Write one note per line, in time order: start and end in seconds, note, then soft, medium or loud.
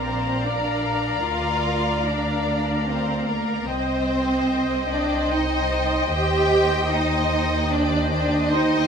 0.00 1.19 A#1 soft
0.00 0.43 C4 medium
0.00 3.65 A#4 soft
0.00 0.44 C5 soft
0.00 3.65 D5 soft
0.00 3.65 F5 soft
0.00 3.65 A#5 soft
0.44 1.24 D4 medium
0.44 1.24 D5 soft
1.23 3.65 D2 medium
1.23 2.04 F4 medium
1.23 2.06 F5 medium
2.05 2.89 D4 medium
2.05 2.88 D5 medium
2.89 3.29 C4 medium
2.89 3.28 C5 medium
3.29 3.70 A#3 medium
3.29 3.69 A#4 medium
3.69 6.08 C2 medium
3.69 4.88 C4 medium
3.69 8.47 C5 medium
3.69 4.90 C5 medium
3.69 8.47 D#5 medium
3.69 8.46 G5 medium
4.91 5.30 D4 medium
4.91 5.31 D5 medium
5.31 6.13 D#4 medium
5.31 6.13 D#5 medium
6.12 8.87 D#2 medium
6.12 6.91 G4 medium
6.12 6.91 G5 medium
6.92 7.72 D#4 medium
6.92 7.72 D#5 medium
7.72 8.10 D4 medium
7.72 8.09 D5 medium
8.11 8.50 D4 medium
8.11 8.50 D5 medium
8.50 8.87 D#4 medium
8.50 8.87 C5 medium
8.50 8.87 D#5 medium
8.50 8.87 G5 medium